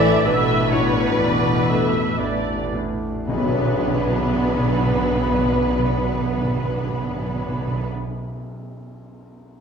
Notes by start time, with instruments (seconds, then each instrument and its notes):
Already playing: double bass section A1, harp A2 A3 D4 E4, grand piano A2 A3 D4 E4, french horn section E3, cello section E3, flute A4, viola section D5, violin section E5
0.24 double bass section A1, french horn section B2, cello section B2, grand piano A3 D4, flute D4, harp E4, violin section B4, viola section E5
0.29 grand piano E4
0.71 grand piano A3 D4 E4, harp D4, viola section C#5
1.17 double bass section A1, harp E3, viola section D5
1.21 grand piano E2
1.67 harp A3, grand piano A3 D4 E4, viola section E5
2.17 double bass section A1, grand piano A3 D4 E4, harp E4, viola section D5
2.72 grand piano A3 D4 E4, harp D4
3.27 double bass section B1, grand piano B1, harp B2, timpani B2, viola section F#3 D4, violin section B3 B4, french horn section B3, cello section B3, flute B5, tam-tam
3.34 timpani B2, grand piano B2, harp F#3
3.41 timpani B2, grand piano F#3, harp B3
3.48 timpani B2, grand piano B3, harp D4
3.55 timpani B2, grand piano D4, harp B4
3.61 timpani B2, grand piano B4
3.68 timpani B2
3.74 timpani B2
3.81 timpani B2
3.87 timpani B2
3.93 timpani B2
4.01 timpani B2
4.07 timpani B2
4.14 timpani B2
4.20 timpani B2
4.27 timpani B2
4.34 timpani B2
4.40 timpani B2
4.48 timpani B2
4.54 timpani B2
4.60 timpani B2
4.67 timpani B2
4.73 timpani B2
4.80 timpani B2
4.86 timpani B2
4.93 timpani B2
5.00 timpani B2
5.07 timpani B2
5.14 timpani B2
5.20 timpani B2
5.26 timpani B2
5.33 timpani B2
5.39 timpani B2
5.46 timpani B2
5.52 timpani B2
5.59 timpani B2
5.65 timpani B2
5.73 timpani B2
5.79 timpani B2
5.85 timpani B2
5.92 timpani B2
5.98 timpani B2
6.05 timpani B2
6.11 timpani B2
6.17 timpani B2
6.24 timpani B2
6.31 timpani B2
6.38 timpani B2
6.45 timpani B2
6.51 timpani B2
6.57 timpani B2
6.64 timpani B2
6.70 timpani B2
6.77 timpani B2
6.83 timpani B2
6.90 timpani B2
6.96 timpani B2
7.02 timpani B2
7.09 timpani B2
7.16 timpani B2
7.22 timpani B2
7.29 timpani B2
7.35 timpani B2
7.41 timpani B2
7.48 timpani B2
7.54 timpani B2
7.61 timpani B2
7.67 timpani B2
7.74 timpani B2
7.80 timpani B2